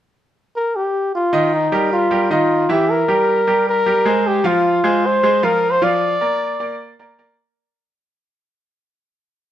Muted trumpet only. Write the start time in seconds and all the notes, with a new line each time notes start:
0.56 A#4
0.76 G4
1.15 F4
1.54 D#4
1.93 F4
2.32 F4
2.71 G4
2.91 A#4
3.69 A#4
4.27 G4
4.47 F4
5.06 C5
5.44 A#4
5.71 C5
5.83 D5